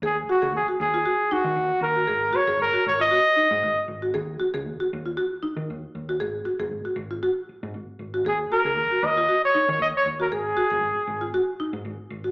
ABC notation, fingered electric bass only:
X:1
M:4/4
L:1/16
Q:"Swing 16ths" 1/4=117
K:Ebm
V:1 name="Fingered electric bass" clef=bass
E,,2 z D,, E,, z E,,2 z3 E, E,, z E,,2 | A,,,2 z G,,, A,,, z A,,,2 z3 A,, A,,, z A,,,2 | E,,2 z D,, E,, z E,,2 z3 E, E,, z E,,2 | A,,,2 z G,,, A,,, z A,,,2 z3 A,, A,,, z A,,,2 |
E,,2 z D,, E,, z E,,2 z3 E, E,, z E,,2 | A,,,2 z G,,, A,,, z A,,,2 z3 A,, A,,, z A,,,2 |]